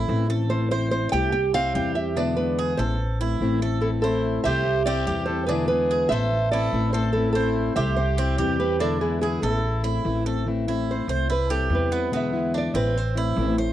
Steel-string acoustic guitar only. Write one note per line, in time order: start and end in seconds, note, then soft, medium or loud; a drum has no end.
0.08 0.28 E3 medium
0.08 0.29 A3 medium
0.08 0.28 C4 medium
0.08 0.27 E4 medium
0.28 0.49 A3 soft
0.28 0.49 C4 soft
0.28 0.49 E4 medium
0.49 0.70 E3 medium
0.49 0.70 A3 medium
0.49 0.70 C4 medium
0.49 0.70 E4 medium
0.71 1.12 A3 medium
0.71 1.12 C4 medium
0.71 1.11 E4 medium
1.12 1.33 A3 soft
1.12 1.33 C4 soft
1.12 1.32 E4 medium
1.33 muted steel-string acoustic guitar stroke medium
1.53 1.74 G3 soft
1.53 1.74 C4 soft
1.53 1.74 E4 medium
1.74 1.94 C3 medium
1.74 1.95 E3 medium
1.74 1.95 G3 medium
1.74 1.95 C4 medium
1.74 1.94 E4 medium
1.96 2.16 G3 soft
1.96 2.16 C4 soft
1.96 2.16 E4 medium
2.16 2.36 B2 medium
2.16 2.36 D3 medium
2.16 2.37 G#3 medium
2.16 2.36 B3 medium
2.16 2.36 E4 medium
2.37 2.79 D3 medium
2.37 2.78 G#3 medium
2.37 2.78 B3 medium
2.37 2.77 E4 medium
2.78 2.99 G#3 soft
2.78 2.99 B3 soft
2.78 2.98 E4 medium
2.99 muted steel-string acoustic guitar stroke medium
3.21 3.40 A3 soft
3.21 3.41 C4 soft
3.21 3.40 E4 medium
3.41 3.61 E3 medium
3.41 3.61 A3 medium
3.41 3.61 C4 medium
3.41 3.61 E4 medium
3.62 3.82 A3 soft
3.62 3.82 C4 soft
3.62 3.82 E4 soft
3.82 4.02 E3 medium
3.82 4.03 A3 medium
3.82 4.03 C4 medium
3.82 4.02 E4 medium
4.03 4.45 A3 medium
4.03 4.44 C4 medium
4.03 4.44 E4 medium
4.45 4.65 A3 soft
4.45 4.64 C4 soft
4.45 4.65 E4 medium
4.65 muted steel-string acoustic guitar stroke medium
4.86 5.07 G3 soft
4.86 5.06 C4 medium
4.86 5.06 E4 medium
5.07 5.27 C3 medium
5.07 5.27 E3 medium
5.07 5.28 G3 medium
5.07 5.28 C4 medium
5.07 5.27 E4 medium
5.28 5.49 G3 soft
5.28 5.48 C4 soft
5.28 5.48 E4 soft
5.49 5.69 B2 medium
5.49 5.69 D3 medium
5.49 5.69 G#3 medium
5.49 5.69 B3 medium
5.49 5.69 E4 medium
5.70 6.11 D3 medium
5.70 6.11 G#3 medium
5.70 6.11 B3 medium
5.70 6.10 E4 medium
6.12 6.32 G#3 soft
6.12 6.32 B3 soft
6.12 6.31 E4 medium
6.33 muted steel-string acoustic guitar stroke medium
6.53 6.73 A3 soft
6.53 6.73 C4 medium
6.53 6.72 E4 medium
6.73 6.93 E3 medium
6.73 6.93 A3 medium
6.73 6.93 C4 medium
6.73 6.93 E4 medium
6.94 7.14 A3 soft
6.94 7.14 C4 soft
6.94 7.14 E4 medium
7.15 7.35 E3 medium
7.15 7.35 A3 medium
7.15 7.35 C4 medium
7.15 7.34 E4 medium
7.35 7.77 A3 medium
7.35 7.76 C4 medium
7.35 7.75 E4 medium
7.76 7.97 A3 soft
7.76 7.97 C4 soft
7.76 7.96 E4 soft
7.97 muted steel-string acoustic guitar stroke medium
8.19 8.38 G3 soft
8.19 8.38 C4 soft
8.19 8.38 E4 medium
8.38 8.59 C3 medium
8.38 8.59 E3 medium
8.38 8.59 G3 medium
8.38 8.59 C4 medium
8.38 8.58 E4 medium
8.60 8.80 G3 soft
8.60 8.80 C4 soft
8.60 8.80 E4 soft
8.81 9.00 B2 medium
8.81 9.01 D3 medium
8.81 9.01 G#3 medium
8.81 9.01 B3 medium
8.81 9.00 E4 medium
9.02 9.43 D3 medium
9.02 9.43 G#3 medium
9.02 9.42 B3 medium
9.02 9.41 E4 medium
9.42 9.63 G#3 soft
9.42 9.63 B3 soft
9.42 9.62 E4 soft
9.63 muted steel-string acoustic guitar stroke medium
9.84 10.04 A3 soft
9.84 10.04 C4 soft
9.84 10.04 E4 medium
10.04 10.25 E3 medium
10.04 10.25 A3 medium
10.04 10.25 C4 medium
10.04 10.24 E4 medium
10.26 10.45 A3 soft
10.26 10.46 C4 soft
10.26 10.46 E4 soft
10.46 10.66 E3 medium
10.46 10.66 A3 medium
10.46 10.67 C4 medium
10.46 10.66 E4 medium
10.68 11.09 A3 medium
10.68 11.08 C4 medium
10.68 11.07 E4 medium
11.08 11.29 A3 soft
11.08 11.29 C4 soft
11.08 11.28 E4 medium
11.30 muted steel-string acoustic guitar stroke medium
11.50 11.70 G3 soft
11.50 11.71 C4 medium
11.50 11.70 E4 medium
11.70 11.91 C3 medium
11.70 11.91 E3 medium
11.70 11.91 G3 medium
11.70 11.91 C4 medium
11.70 11.90 E4 medium
11.91 12.12 G3 soft
11.91 12.12 C4 soft
11.91 12.12 E4 medium
12.11 12.32 B2 medium
12.11 12.32 D3 medium
12.11 12.32 G#3 medium
12.11 12.32 B3 medium
12.11 12.32 E4 medium
12.33 12.75 D3 medium
12.33 12.74 G#3 medium
12.33 12.74 B3 medium
12.33 12.73 E4 medium
12.74 12.95 G#3 soft
12.74 12.95 B3 soft
12.74 12.94 E4 soft
12.95 muted steel-string acoustic guitar stroke medium
13.15 13.37 A3 soft
13.15 13.36 C4 medium
13.15 13.36 E4 medium
13.37 13.57 E3 medium
13.37 13.58 A3 medium
13.37 13.57 C4 medium
13.37 13.57 E4 medium
13.58 13.73 A3 soft
13.58 13.73 C4 soft
13.58 13.73 E4 soft